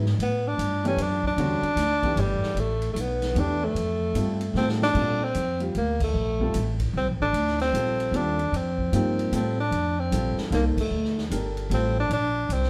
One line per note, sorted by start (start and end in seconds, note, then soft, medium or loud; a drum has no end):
0.00 0.18 G#2 medium
0.06 snare soft
0.19 0.57 A2 medium
0.19 0.49 B3 medium
0.19 ride medium
0.47 0.86 D4 loud
0.58 0.96 G2 medium
0.58 hi-hat pedal medium
0.58 ride medium
0.84 0.97 E3 medium
0.84 0.97 A3 medium
0.84 1.03 C#4 medium
0.84 0.97 D4 medium
0.84 0.98 G4 medium
0.84 ride soft
0.97 1.36 F#2 medium
0.97 ride medium
1.02 1.26 D4 medium
1.23 2.21 D4 loud
1.23 kick soft
1.36 1.61 E2 medium
1.36 1.61 D3 medium
1.36 1.61 G3 medium
1.36 1.61 C#4 medium
1.36 1.62 F#4 medium
1.36 ride medium
1.62 muted upright bass stroke soft
1.62 ride soft
1.76 2.15 D2 medium
1.76 snare soft
1.76 hi-hat pedal soft
1.76 ride medium
2.03 2.54 E3 medium
2.03 2.55 A3 medium
2.03 2.54 D4 medium
2.03 2.55 G4 medium
2.03 kick medium
2.03 ride soft
2.16 2.40 G1 medium
2.16 2.61 G3 medium
2.16 ride medium
2.41 muted upright bass stroke soft
2.41 snare soft
2.55 2.94 A1 medium
2.55 ride medium
2.60 2.93 A3 medium
2.82 ride soft
2.93 3.34 B1 medium
2.93 3.02 A3 medium
2.93 hi-hat pedal medium
2.93 ride medium
3.01 3.41 B3 medium
3.22 snare soft
3.22 ride soft
3.35 3.73 E2 medium
3.35 3.76 E3 medium
3.35 3.76 A3 medium
3.35 3.77 D4 medium
3.35 3.77 G4 medium
3.35 ride medium
3.40 3.66 D4 medium
3.64 4.56 A3 medium
3.74 4.14 F2 medium
3.74 ride medium
4.14 4.53 G2 medium
4.14 4.39 G3 medium
4.14 4.39 C4 soft
4.14 4.39 F4 soft
4.14 4.39 A4 medium
4.14 hi-hat pedal medium
4.14 ride medium
4.41 ride soft
4.54 4.93 A2 medium
4.54 4.79 G3 medium
4.54 4.79 C4 medium
4.54 4.68 C4 medium
4.54 4.79 F4 medium
4.54 4.79 A4 medium
4.54 snare soft
4.68 snare medium
4.82 5.25 D4 loud
4.82 snare medium
4.94 5.33 A#2 medium
4.94 5.18 G3 medium
4.94 5.18 C4 medium
4.94 5.19 F4 medium
4.94 5.19 A4 medium
4.94 kick medium
4.94 crash medium
5.24 5.62 C4 medium
5.35 5.73 F2 medium
5.35 hi-hat pedal medium
5.35 ride medium
5.60 5.73 G3 medium
5.60 5.73 C4 medium
5.60 5.73 F4 medium
5.60 5.74 G4 medium
5.60 ride soft
5.75 6.13 D2 medium
5.75 6.00 A#3 medium
5.75 ride soft
6.00 6.77 A3 medium
6.00 kick medium
6.00 crash medium
6.14 6.53 A#1 medium
6.40 6.53 G3 medium
6.40 6.53 C4 medium
6.40 6.53 F4 medium
6.40 6.54 A4 medium
6.40 kick soft
6.54 6.93 A1 medium
6.54 hi-hat pedal medium
6.54 ride medium
6.80 kick medium
6.80 ride medium
6.93 7.07 C2 medium
6.93 7.08 C4 medium
7.07 7.19 A#1 soft
7.20 7.32 A1 medium
7.20 7.58 D4 medium
7.33 7.72 D2 medium
7.33 ride medium
7.47 snare soft
7.60 8.17 C4 loud
7.60 snare soft
7.60 ride soft
7.73 8.11 A#1 medium
7.73 8.12 G3 medium
7.73 8.12 C4 soft
7.73 8.12 F4 soft
7.73 8.12 A4 medium
7.73 hi-hat pedal medium
7.73 ride medium
8.00 ride soft
8.12 8.51 D#2 medium
8.12 8.36 G3 medium
8.12 8.36 C4 medium
8.12 8.36 F4 medium
8.12 8.37 A4 medium
8.12 ride medium
8.16 8.57 D4 medium
8.39 ride soft
8.52 8.91 F2 medium
8.52 ride medium
8.56 8.94 C4 medium
8.78 kick soft
8.92 9.31 G2 medium
8.92 9.31 F3 medium
8.92 9.31 A#3 medium
8.92 9.31 C4 medium
8.92 9.31 D#4 medium
8.92 9.32 G4 medium
8.92 hi-hat pedal medium
8.92 ride medium
9.19 ride soft
9.32 9.70 A2 medium
9.32 9.55 G3 medium
9.32 9.56 C4 medium
9.32 9.56 F4 medium
9.32 9.56 A4 medium
9.32 hi-hat pedal medium
9.32 ride medium
9.36 9.58 C4 medium
9.60 10.01 D4 medium
9.71 10.10 F2 medium
9.71 ride medium
9.99 10.38 C4 medium
10.12 10.35 A#1 medium
10.12 10.50 G3 medium
10.12 10.50 C4 soft
10.12 10.50 F4 soft
10.12 10.50 A4 medium
10.12 hi-hat pedal medium
10.12 ride medium
10.37 muted upright bass stroke soft
10.37 snare medium
10.51 10.75 C2 medium
10.51 10.74 A#3 medium
10.51 10.65 A#3 medium
10.51 10.75 D#4 medium
10.51 10.75 A4 medium
10.51 10.75 C5 medium
10.51 snare soft
10.51 ride medium
10.77 11.24 A3 medium
10.77 muted upright bass stroke soft
10.77 kick medium
10.77 crash medium
10.90 11.29 D2 medium
11.04 snare soft
11.18 snare soft
11.30 11.69 G1 medium
11.30 11.70 D4 soft
11.30 11.70 G4 medium
11.30 11.69 A4 medium
11.30 11.70 A#4 medium
11.30 hi-hat pedal medium
11.30 ride medium
11.57 ride soft
11.70 12.09 A1 medium
11.70 11.94 G3 medium
11.70 11.94 C4 medium
11.70 11.94 F4 medium
11.70 11.94 A4 medium
11.70 ride medium
11.74 11.96 C4 medium
12.00 12.11 D4 loud
12.10 12.48 A#1 medium
12.10 12.54 D4 loud
12.10 ride medium
12.49 12.70 C2 medium
12.49 12.70 C4 medium
12.49 hi-hat pedal medium
12.49 ride medium
12.63 snare soft